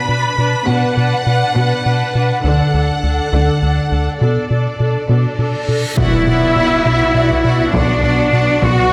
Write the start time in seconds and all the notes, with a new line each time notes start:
Already playing: B2 B5
0.08 B2 D4 B4
0.38 B2 D4 B4
0.67 B2 D4 B4 F#5
0.96 B2 D4 B4
1.26 B2 D4 B4
1.56 B2 D4 B4
1.84 B2 D4 B4
2.14 B2 D4 B4
2.44 D2 D3 D4 A4 F#5
2.74 D2 D4 A4
3.03 D2 D4 A4
3.32 D2 D3 D4 A4
3.62 D2 D4 A4
3.90 D2 D4 A4
4.20 B2 D4 A4 D5, reverse cymbal
4.50 B2 D4 A4
4.79 B2 D4 A4
5.09 B2 D4 A4
5.39 B2 D4 A4
5.68 B2 D4 A4
5.97 B1 B2 B3 E4 F#4 D5 F#5, taiko, impact
6.27 B2 B3 F#4 D5 F#5
6.56 B2 B3 F#4 D5 F#5
6.85 B1 B2 B3 F#4 D5 F#5
7.15 B2 B3 F#4 D5 F#5
7.30 taiko
7.44 B2 B3 F#4 D5 F#5
7.73 B1 B2 B3 D4 F#4 D5 F#5, taiko
8.03 B2 B3 F#4 D5 F#5
8.32 B2 B3 F#4 D5 F#5
8.61 B1 B2 B3 F#4 D5 F#5, taiko